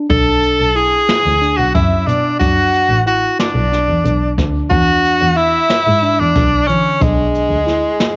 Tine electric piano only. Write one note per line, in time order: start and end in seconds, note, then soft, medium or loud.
0.09 0.68 D4 medium
0.75 1.34 E4 medium
1.41 1.70 D4 medium
1.74 2.04 C#4 medium
2.07 2.36 D4 medium
2.40 2.99 D4 medium
3.06 3.65 E4 medium
3.72 4.01 D4 medium
4.04 4.34 D4 medium
4.38 4.67 D4 medium
4.70 5.29 D4 medium
5.37 5.95 E4 medium
6.02 6.32 D4 medium
6.36 6.65 D4 medium
6.68 6.98 D3 medium
7.00 7.59 D4 medium
7.66 8.16 E4 medium